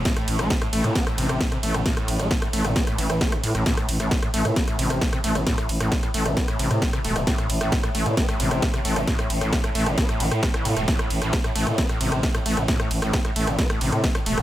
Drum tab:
RD |x-x-x-x-x-x-x-x-|x-x-x-x-x-x-x-x-|x-x-x-x-x-x-x-x-|x-x-x-x-x-x-x-x-|
HH |xxoxxxoxxxoxxxox|xxoxxxoxxxoxxxox|xxoxxxoxxxoxxxox|xxoxxxoxxxoxxxox|
SD |or-ror-ror-ror-r|or-ror-ror-ror-r|or-ror-ror-ror-r|or-ror-ror-ror-r|
BD |o---o---o---o---|o---o---o---o---|o---o---o---o---|o---o---o---o---|

RD |x-x-x-x-x-x-x-x-|x-x-x-x-x-x-x-x-|x-x-x-x-x-x-x-x-|x-x-x-x-x-x-x-x-|
HH |xxoxxxoxxxoxxxox|xxoxxxoxxxoxxxox|xxoxxxoxxxoxxxox|xxoxxxoxxxoxxxox|
SD |or-ror-ror-ror-r|or-ror-ror-ror-r|or-ror-ror-ror-r|or-ror-ror-ror-r|
BD |o---o---o---o---|o---o---o---o---|o---o---o---o---|o---o---o---o---|